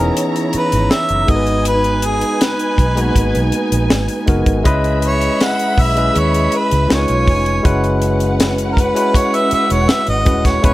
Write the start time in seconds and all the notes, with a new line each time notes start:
Already playing: E1 E3 B3 C#4 E4 A#4 C#5 A#5
0.00 D#4 G#4
0.17 closed hi-hat
0.36 closed hi-hat
0.53 B4, muted fingered electric bass stroke, closed hi-hat
0.72 G#1, closed hi-hat
0.91 E5, snare, closed hi-hat
1.09 F#1, closed hi-hat
1.27 G#1 G#3 B3 D#4 F#4 A4 B4 D#5 G#5, kick, closed hi-hat
1.36 B4
1.47 closed hi-hat
1.65 B4, closed hi-hat
1.84 closed hi-hat
2.02 G#4, closed hi-hat
2.21 closed hi-hat
2.41 B4, snare, closed hi-hat
2.59 closed hi-hat
2.78 B1, kick, closed hi-hat
2.96 G#3 A#3 D#4 F#4 B4, closed hi-hat
3.03 B3
3.15 G#1, kick, closed hi-hat
3.35 B1, closed hi-hat
3.52 closed hi-hat
3.72 A#1, closed hi-hat
3.90 G#1, snare, closed hi-hat
4.08 closed hi-hat
4.26 F#1 G#3 B3 D#4 F#4 A#4, kick, closed hi-hat
4.46 G#1, kick, closed hi-hat
4.64 C#2 G#3 C#4 E4 G#4 B4 D#5 E5 B5, kick, closed hi-hat
4.84 closed hi-hat
5.02 C#5, closed hi-hat
5.21 closed hi-hat
5.41 F#5, snare, closed hi-hat
5.59 closed hi-hat
5.78 B1, kick, open hi-hat
5.82 E5
5.95 G#3 C#4 E4 B4 D#5, closed hi-hat
6.16 D#2 C#5, closed hi-hat
6.34 closed hi-hat
6.52 closed hi-hat
6.57 B4
6.71 C#2, closed hi-hat
6.89 C#2 G#3 C#4 D#4 F4 A#4 C#5 G#5, snare, closed hi-hat
6.94 B4 C#5
7.08 B1, closed hi-hat
7.27 F1, kick, open hi-hat
7.46 closed hi-hat
7.63 F#1 G#3 C#4 E4 F#4 B4 F#5, kick, closed hi-hat
7.84 closed hi-hat
8.02 closed hi-hat
8.20 closed hi-hat
8.40 snare, closed hi-hat
8.58 closed hi-hat
8.72 A#4
8.77 B4, kick, closed hi-hat
8.94 G#3 C#4 E4 F#4 B4, closed hi-hat
9.14 C#5, kick, closed hi-hat
9.34 E5, closed hi-hat
9.51 E5, muted fingered electric bass stroke, closed hi-hat
9.70 E1 C#5, closed hi-hat
9.89 E5, snare, closed hi-hat
10.07 G#1 D#5, closed hi-hat
10.25 D#1 G#3 C#4 E4 F#4 B4, kick, closed hi-hat
10.45 C#5, kick, snare, closed hi-hat
10.62 E1 G#3 B3 C#4 E4 B4 C#5 E5, kick, closed hi-hat